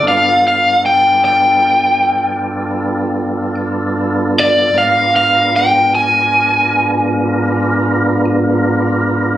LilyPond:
<<
  \new Staff \with { instrumentName = "Overdriven electric guitar" } { \time 12/8 \key g \major \tempo 4. = 51 f''8 f''8 g''8 g''2. r4 d''8 | eis''8 eis''8 g''8 gis''2. r4. | }
  \new Staff \with { instrumentName = "Tonewheel organ" } { \time 12/8 \key g \major <g, b d' f' a'>1. | <gis, b d' eis' bes'>1. | }
>>